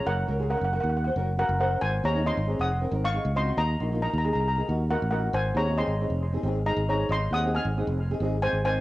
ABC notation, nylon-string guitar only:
X:1
M:4/4
L:1/16
Q:1/4=136
K:Abmix
V:1 name="Nylon-string guitar"
z2 [DGB] [DGA] [DGB] z [DGB]2 z [DGc] [DGB] z [DGB] z [DGc]2 | z2 [CEA] [CEA] [CE] z [CEA]2 z [CEB] [CEB] z [CEA] z [CEG]2 | z2 [B,EG] [B,EF] [B,G] z [B,EA]2 z [B,EA] [B,EG] z [B,EG] z [B,EG]2 | z2 [CEA] [CEF] [CEA] z [CEA]2 z [CEA] [CEA] z [CEA] z [CEA]2 |
z2 [CEA] [CEA] [CEA] z [CEA]2 z [CEA] [CEA] z [CEA] z [CEB]2 |]